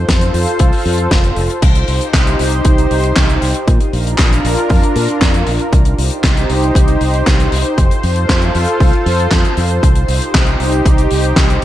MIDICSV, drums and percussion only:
0, 0, Header, 1, 2, 480
1, 0, Start_track
1, 0, Tempo, 512821
1, 1521, Time_signature, 4, 2, 24, 8
1, 10900, End_track
2, 0, Start_track
2, 0, Title_t, "Drums"
2, 80, Note_on_c, 9, 36, 110
2, 81, Note_on_c, 9, 42, 90
2, 83, Note_on_c, 9, 38, 106
2, 174, Note_off_c, 9, 36, 0
2, 174, Note_off_c, 9, 42, 0
2, 177, Note_off_c, 9, 38, 0
2, 200, Note_on_c, 9, 42, 58
2, 293, Note_off_c, 9, 42, 0
2, 320, Note_on_c, 9, 46, 107
2, 414, Note_off_c, 9, 46, 0
2, 447, Note_on_c, 9, 42, 52
2, 541, Note_off_c, 9, 42, 0
2, 555, Note_on_c, 9, 42, 101
2, 561, Note_on_c, 9, 36, 115
2, 649, Note_off_c, 9, 42, 0
2, 654, Note_off_c, 9, 36, 0
2, 680, Note_on_c, 9, 46, 73
2, 774, Note_off_c, 9, 46, 0
2, 801, Note_on_c, 9, 46, 104
2, 895, Note_off_c, 9, 46, 0
2, 917, Note_on_c, 9, 42, 55
2, 1011, Note_off_c, 9, 42, 0
2, 1040, Note_on_c, 9, 42, 90
2, 1041, Note_on_c, 9, 36, 110
2, 1044, Note_on_c, 9, 38, 104
2, 1134, Note_off_c, 9, 36, 0
2, 1134, Note_off_c, 9, 42, 0
2, 1137, Note_off_c, 9, 38, 0
2, 1159, Note_on_c, 9, 42, 52
2, 1253, Note_off_c, 9, 42, 0
2, 1277, Note_on_c, 9, 46, 105
2, 1370, Note_off_c, 9, 46, 0
2, 1403, Note_on_c, 9, 42, 52
2, 1497, Note_off_c, 9, 42, 0
2, 1519, Note_on_c, 9, 42, 101
2, 1521, Note_on_c, 9, 36, 116
2, 1521, Note_on_c, 9, 49, 98
2, 1613, Note_off_c, 9, 42, 0
2, 1614, Note_off_c, 9, 36, 0
2, 1614, Note_off_c, 9, 49, 0
2, 1642, Note_on_c, 9, 42, 54
2, 1736, Note_off_c, 9, 42, 0
2, 1757, Note_on_c, 9, 46, 100
2, 1850, Note_off_c, 9, 46, 0
2, 1881, Note_on_c, 9, 42, 55
2, 1975, Note_off_c, 9, 42, 0
2, 1999, Note_on_c, 9, 38, 108
2, 2001, Note_on_c, 9, 36, 118
2, 2005, Note_on_c, 9, 39, 90
2, 2007, Note_on_c, 9, 42, 100
2, 2093, Note_off_c, 9, 38, 0
2, 2095, Note_off_c, 9, 36, 0
2, 2098, Note_off_c, 9, 39, 0
2, 2100, Note_off_c, 9, 42, 0
2, 2126, Note_on_c, 9, 42, 62
2, 2220, Note_off_c, 9, 42, 0
2, 2240, Note_on_c, 9, 46, 111
2, 2333, Note_off_c, 9, 46, 0
2, 2359, Note_on_c, 9, 42, 54
2, 2452, Note_off_c, 9, 42, 0
2, 2477, Note_on_c, 9, 42, 99
2, 2480, Note_on_c, 9, 36, 124
2, 2571, Note_off_c, 9, 42, 0
2, 2574, Note_off_c, 9, 36, 0
2, 2605, Note_on_c, 9, 42, 59
2, 2699, Note_off_c, 9, 42, 0
2, 2723, Note_on_c, 9, 46, 105
2, 2817, Note_off_c, 9, 46, 0
2, 2841, Note_on_c, 9, 42, 60
2, 2935, Note_off_c, 9, 42, 0
2, 2960, Note_on_c, 9, 36, 119
2, 2960, Note_on_c, 9, 39, 102
2, 2962, Note_on_c, 9, 38, 127
2, 2963, Note_on_c, 9, 42, 94
2, 3054, Note_off_c, 9, 36, 0
2, 3054, Note_off_c, 9, 39, 0
2, 3056, Note_off_c, 9, 38, 0
2, 3057, Note_off_c, 9, 42, 0
2, 3083, Note_on_c, 9, 42, 62
2, 3177, Note_off_c, 9, 42, 0
2, 3200, Note_on_c, 9, 46, 109
2, 3294, Note_off_c, 9, 46, 0
2, 3317, Note_on_c, 9, 42, 54
2, 3411, Note_off_c, 9, 42, 0
2, 3440, Note_on_c, 9, 36, 121
2, 3442, Note_on_c, 9, 42, 88
2, 3534, Note_off_c, 9, 36, 0
2, 3536, Note_off_c, 9, 42, 0
2, 3561, Note_on_c, 9, 42, 50
2, 3655, Note_off_c, 9, 42, 0
2, 3682, Note_on_c, 9, 46, 96
2, 3775, Note_off_c, 9, 46, 0
2, 3808, Note_on_c, 9, 42, 57
2, 3902, Note_off_c, 9, 42, 0
2, 3913, Note_on_c, 9, 39, 94
2, 3918, Note_on_c, 9, 42, 96
2, 3920, Note_on_c, 9, 36, 126
2, 3924, Note_on_c, 9, 38, 112
2, 4007, Note_off_c, 9, 39, 0
2, 4012, Note_off_c, 9, 42, 0
2, 4014, Note_off_c, 9, 36, 0
2, 4017, Note_off_c, 9, 38, 0
2, 4049, Note_on_c, 9, 42, 62
2, 4143, Note_off_c, 9, 42, 0
2, 4163, Note_on_c, 9, 46, 109
2, 4256, Note_off_c, 9, 46, 0
2, 4277, Note_on_c, 9, 42, 61
2, 4371, Note_off_c, 9, 42, 0
2, 4396, Note_on_c, 9, 46, 75
2, 4400, Note_on_c, 9, 36, 126
2, 4489, Note_off_c, 9, 46, 0
2, 4494, Note_off_c, 9, 36, 0
2, 4525, Note_on_c, 9, 42, 51
2, 4619, Note_off_c, 9, 42, 0
2, 4640, Note_on_c, 9, 46, 103
2, 4734, Note_off_c, 9, 46, 0
2, 4758, Note_on_c, 9, 42, 57
2, 4852, Note_off_c, 9, 42, 0
2, 4880, Note_on_c, 9, 36, 126
2, 4881, Note_on_c, 9, 39, 94
2, 4885, Note_on_c, 9, 38, 127
2, 4887, Note_on_c, 9, 42, 94
2, 4974, Note_off_c, 9, 36, 0
2, 4975, Note_off_c, 9, 39, 0
2, 4978, Note_off_c, 9, 38, 0
2, 4980, Note_off_c, 9, 42, 0
2, 5000, Note_on_c, 9, 42, 57
2, 5093, Note_off_c, 9, 42, 0
2, 5116, Note_on_c, 9, 46, 101
2, 5210, Note_off_c, 9, 46, 0
2, 5236, Note_on_c, 9, 42, 51
2, 5329, Note_off_c, 9, 42, 0
2, 5360, Note_on_c, 9, 36, 123
2, 5362, Note_on_c, 9, 42, 90
2, 5453, Note_off_c, 9, 36, 0
2, 5456, Note_off_c, 9, 42, 0
2, 5478, Note_on_c, 9, 42, 57
2, 5571, Note_off_c, 9, 42, 0
2, 5602, Note_on_c, 9, 46, 110
2, 5695, Note_off_c, 9, 46, 0
2, 5719, Note_on_c, 9, 42, 56
2, 5813, Note_off_c, 9, 42, 0
2, 5838, Note_on_c, 9, 38, 127
2, 5839, Note_on_c, 9, 39, 88
2, 5840, Note_on_c, 9, 36, 126
2, 5845, Note_on_c, 9, 42, 89
2, 5932, Note_off_c, 9, 38, 0
2, 5932, Note_off_c, 9, 39, 0
2, 5934, Note_off_c, 9, 36, 0
2, 5939, Note_off_c, 9, 42, 0
2, 5964, Note_on_c, 9, 42, 59
2, 6057, Note_off_c, 9, 42, 0
2, 6080, Note_on_c, 9, 46, 101
2, 6174, Note_off_c, 9, 46, 0
2, 6199, Note_on_c, 9, 42, 50
2, 6293, Note_off_c, 9, 42, 0
2, 6320, Note_on_c, 9, 36, 126
2, 6328, Note_on_c, 9, 42, 108
2, 6413, Note_off_c, 9, 36, 0
2, 6422, Note_off_c, 9, 42, 0
2, 6438, Note_on_c, 9, 42, 52
2, 6532, Note_off_c, 9, 42, 0
2, 6560, Note_on_c, 9, 46, 96
2, 6654, Note_off_c, 9, 46, 0
2, 6680, Note_on_c, 9, 42, 58
2, 6774, Note_off_c, 9, 42, 0
2, 6800, Note_on_c, 9, 36, 127
2, 6803, Note_on_c, 9, 42, 96
2, 6804, Note_on_c, 9, 39, 90
2, 6809, Note_on_c, 9, 38, 121
2, 6894, Note_off_c, 9, 36, 0
2, 6897, Note_off_c, 9, 39, 0
2, 6897, Note_off_c, 9, 42, 0
2, 6902, Note_off_c, 9, 38, 0
2, 6925, Note_on_c, 9, 42, 56
2, 7018, Note_off_c, 9, 42, 0
2, 7040, Note_on_c, 9, 46, 108
2, 7133, Note_off_c, 9, 46, 0
2, 7157, Note_on_c, 9, 42, 51
2, 7251, Note_off_c, 9, 42, 0
2, 7280, Note_on_c, 9, 36, 123
2, 7282, Note_on_c, 9, 42, 89
2, 7374, Note_off_c, 9, 36, 0
2, 7375, Note_off_c, 9, 42, 0
2, 7406, Note_on_c, 9, 42, 58
2, 7500, Note_off_c, 9, 42, 0
2, 7520, Note_on_c, 9, 46, 92
2, 7613, Note_off_c, 9, 46, 0
2, 7637, Note_on_c, 9, 42, 57
2, 7731, Note_off_c, 9, 42, 0
2, 7760, Note_on_c, 9, 36, 127
2, 7763, Note_on_c, 9, 42, 101
2, 7764, Note_on_c, 9, 38, 127
2, 7767, Note_on_c, 9, 39, 85
2, 7854, Note_off_c, 9, 36, 0
2, 7857, Note_off_c, 9, 42, 0
2, 7858, Note_off_c, 9, 38, 0
2, 7860, Note_off_c, 9, 39, 0
2, 7880, Note_on_c, 9, 42, 53
2, 7973, Note_off_c, 9, 42, 0
2, 8001, Note_on_c, 9, 46, 107
2, 8094, Note_off_c, 9, 46, 0
2, 8121, Note_on_c, 9, 42, 50
2, 8215, Note_off_c, 9, 42, 0
2, 8241, Note_on_c, 9, 36, 127
2, 8243, Note_on_c, 9, 46, 78
2, 8334, Note_off_c, 9, 36, 0
2, 8336, Note_off_c, 9, 46, 0
2, 8361, Note_on_c, 9, 42, 49
2, 8455, Note_off_c, 9, 42, 0
2, 8483, Note_on_c, 9, 46, 102
2, 8577, Note_off_c, 9, 46, 0
2, 8608, Note_on_c, 9, 42, 52
2, 8702, Note_off_c, 9, 42, 0
2, 8716, Note_on_c, 9, 42, 102
2, 8717, Note_on_c, 9, 38, 118
2, 8718, Note_on_c, 9, 39, 83
2, 8721, Note_on_c, 9, 36, 123
2, 8810, Note_off_c, 9, 42, 0
2, 8811, Note_off_c, 9, 38, 0
2, 8811, Note_off_c, 9, 39, 0
2, 8815, Note_off_c, 9, 36, 0
2, 8843, Note_on_c, 9, 42, 53
2, 8937, Note_off_c, 9, 42, 0
2, 8958, Note_on_c, 9, 46, 106
2, 9051, Note_off_c, 9, 46, 0
2, 9075, Note_on_c, 9, 42, 52
2, 9169, Note_off_c, 9, 42, 0
2, 9201, Note_on_c, 9, 36, 118
2, 9206, Note_on_c, 9, 42, 101
2, 9295, Note_off_c, 9, 36, 0
2, 9300, Note_off_c, 9, 42, 0
2, 9317, Note_on_c, 9, 42, 57
2, 9411, Note_off_c, 9, 42, 0
2, 9439, Note_on_c, 9, 46, 111
2, 9533, Note_off_c, 9, 46, 0
2, 9566, Note_on_c, 9, 42, 59
2, 9660, Note_off_c, 9, 42, 0
2, 9680, Note_on_c, 9, 42, 101
2, 9681, Note_on_c, 9, 36, 124
2, 9685, Note_on_c, 9, 39, 93
2, 9686, Note_on_c, 9, 38, 113
2, 9774, Note_off_c, 9, 42, 0
2, 9775, Note_off_c, 9, 36, 0
2, 9779, Note_off_c, 9, 39, 0
2, 9780, Note_off_c, 9, 38, 0
2, 9798, Note_on_c, 9, 42, 51
2, 9891, Note_off_c, 9, 42, 0
2, 9922, Note_on_c, 9, 46, 104
2, 10016, Note_off_c, 9, 46, 0
2, 10039, Note_on_c, 9, 42, 57
2, 10132, Note_off_c, 9, 42, 0
2, 10161, Note_on_c, 9, 36, 123
2, 10164, Note_on_c, 9, 42, 99
2, 10254, Note_off_c, 9, 36, 0
2, 10258, Note_off_c, 9, 42, 0
2, 10279, Note_on_c, 9, 42, 60
2, 10373, Note_off_c, 9, 42, 0
2, 10395, Note_on_c, 9, 46, 104
2, 10489, Note_off_c, 9, 46, 0
2, 10518, Note_on_c, 9, 42, 58
2, 10611, Note_off_c, 9, 42, 0
2, 10635, Note_on_c, 9, 38, 115
2, 10640, Note_on_c, 9, 42, 104
2, 10641, Note_on_c, 9, 36, 123
2, 10645, Note_on_c, 9, 39, 91
2, 10729, Note_off_c, 9, 38, 0
2, 10734, Note_off_c, 9, 42, 0
2, 10735, Note_off_c, 9, 36, 0
2, 10738, Note_off_c, 9, 39, 0
2, 10765, Note_on_c, 9, 42, 58
2, 10859, Note_off_c, 9, 42, 0
2, 10900, End_track
0, 0, End_of_file